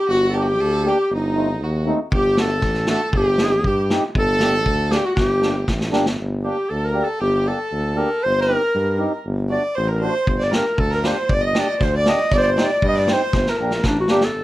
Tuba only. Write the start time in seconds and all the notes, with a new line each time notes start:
0.09 G1
0.60 D2
1.11 G1
1.61 D#2
2.12 G1
2.63 A1
3.13 G1
3.64 G2
4.15 G1
4.66 D2
5.17 G1
5.68 A1
5.94 G1
6.20 G1
6.71 D2
7.21 G1
7.72 D2
8.25 G1
8.75 G2
9.26 G1
9.77 A1
10.27 G1
10.78 D2
11.30 G1
11.80 D2
12.31 G1
12.83 G2
13.33 G1
13.58 A#1
13.84 A1
14.09 G1
14.34 G1